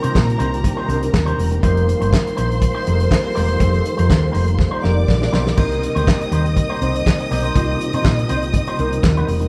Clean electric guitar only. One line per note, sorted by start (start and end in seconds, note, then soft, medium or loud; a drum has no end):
0.02 0.18 A#3 medium
0.02 0.18 D#4 medium
0.02 0.18 G4 medium
0.02 0.17 C5 medium
0.27 muted clean electric guitar stroke soft
0.38 0.58 A#3 medium
0.38 0.51 D#4 medium
0.38 0.51 G4 medium
0.38 0.50 C5 medium
0.51 muted clean electric guitar stroke soft
0.63 muted clean electric guitar stroke soft
0.77 0.87 A#3 medium
0.77 0.87 D#4 medium
0.77 0.87 G4 medium
0.77 0.88 C5 medium
0.88 1.04 A#3 medium
0.88 1.01 D#4 medium
0.88 1.01 G4 medium
0.88 1.00 C5 medium
1.02 muted clean electric guitar stroke soft
1.13 muted clean electric guitar stroke soft
1.26 1.37 A#3 medium
1.26 1.37 D#4 medium
1.26 1.37 G4 medium
1.26 1.37 C5 medium
1.38 muted clean electric guitar stroke soft
1.51 muted clean electric guitar stroke medium
1.63 1.86 A#3 medium
1.63 1.86 D#4 medium
1.63 1.86 G4 medium
1.63 1.86 C5 medium
1.88 muted clean electric guitar stroke soft
2.01 2.15 A#3 soft
2.01 2.15 D#4 soft
2.01 2.15 G4 medium
2.01 2.15 C5 medium
2.25 muted clean electric guitar stroke soft
2.36 2.56 A#3 medium
2.36 2.48 D#4 medium
2.36 2.48 G4 medium
2.36 2.47 C5 medium
2.49 muted clean electric guitar stroke soft
2.60 muted clean electric guitar stroke soft
2.74 2.85 A#3 medium
2.74 2.85 D#4 medium
2.74 2.86 G4 medium
2.74 2.86 C5 medium
2.86 3.02 A#3 medium
2.86 2.99 D#4 medium
2.86 2.98 G4 medium
2.86 2.98 C5 medium
2.99 muted clean electric guitar stroke medium
3.10 muted clean electric guitar stroke soft
3.23 muted clean electric guitar stroke soft
3.34 3.47 A#3 medium
3.34 3.47 D#4 medium
3.34 3.47 G4 medium
3.34 3.47 D5 medium
3.48 3.58 A#3 medium
3.48 3.58 D#4 medium
3.48 3.59 G4 medium
3.48 3.59 C5 medium
3.59 3.82 A#3 medium
3.59 3.83 D#4 medium
3.59 3.83 G4 medium
3.59 3.83 C5 medium
3.83 muted clean electric guitar stroke soft
3.97 4.12 A#3 soft
3.97 4.12 D#4 medium
3.97 4.12 G4 medium
3.97 4.12 C5 medium
4.21 muted clean electric guitar stroke soft
4.32 4.52 A#3 loud
4.32 4.45 D#4 medium
4.32 4.45 G4 medium
4.32 4.44 C5 medium
4.45 muted clean electric guitar stroke soft
4.57 muted clean electric guitar stroke soft
4.71 4.82 A#3 medium
4.71 4.82 D#4 medium
4.71 4.83 G4 medium
4.71 4.83 C5 medium
4.83 4.99 A#3 medium
4.83 4.96 D#4 medium
4.83 4.96 G4 medium
4.83 4.96 C5 medium
4.97 muted clean electric guitar stroke soft
5.21 muted clean electric guitar stroke soft
5.32 5.52 A#3 medium
5.32 5.44 D#4 medium
5.32 5.44 G4 medium
5.32 5.43 C5 medium
5.45 muted clean electric guitar stroke soft
5.57 5.80 A#3 medium
5.57 5.80 D#4 medium
5.57 5.80 G4 medium
5.57 5.81 C5 medium
5.82 muted clean electric guitar stroke soft
5.95 6.10 A#3 soft
5.95 6.10 D#4 medium
5.95 6.10 G4 medium
5.95 6.10 C5 medium
6.21 muted clean electric guitar stroke soft
6.32 6.51 A#3 medium
6.32 6.45 D#4 medium
6.32 6.45 G4 medium
6.32 6.44 C5 medium
6.46 muted clean electric guitar stroke soft
6.56 muted clean electric guitar stroke soft
6.69 6.81 A#3 medium
6.69 6.81 D#4 medium
6.69 6.82 G4 medium
6.69 6.82 C5 medium
6.82 6.97 A#3 medium
6.82 6.94 D#4 medium
6.82 6.94 G4 medium
6.82 6.93 C5 medium
6.95 muted clean electric guitar stroke soft
7.07 muted clean electric guitar stroke soft
7.20 muted clean electric guitar stroke medium
7.31 7.43 A#3 medium
7.31 7.43 D#4 medium
7.31 7.42 G4 medium
7.31 7.43 D5 medium
7.43 7.54 A#3 medium
7.43 7.54 D#4 medium
7.43 7.55 G4 medium
7.43 7.55 C5 medium
7.55 7.78 A#3 medium
7.55 7.78 D#4 medium
7.55 7.78 G4 medium
7.55 7.78 C5 medium
7.80 muted clean electric guitar stroke soft
7.94 8.08 A#3 soft
7.94 8.08 D#4 medium
7.94 8.08 G4 medium
7.94 8.08 C5 medium
8.18 muted clean electric guitar stroke soft
8.29 8.48 A#3 medium
8.29 8.42 D#4 medium
8.29 8.42 G4 medium
8.29 8.41 C5 medium
8.43 muted clean electric guitar stroke medium
8.55 muted clean electric guitar stroke soft
8.67 8.78 A#3 medium
8.67 8.79 D#4 medium
8.67 8.79 G4 medium
8.67 8.79 C5 medium
8.79 8.94 A#3 medium
8.79 8.92 D#4 medium
8.79 8.91 G4 medium
8.79 8.91 C5 medium
8.92 muted clean electric guitar stroke soft
9.03 muted clean electric guitar stroke soft
9.17 9.27 A#3 medium
9.17 9.27 D#4 medium
9.17 9.27 G4 medium
9.17 9.28 C5 medium
9.28 muted clean electric guitar stroke soft
9.40 muted clean electric guitar stroke medium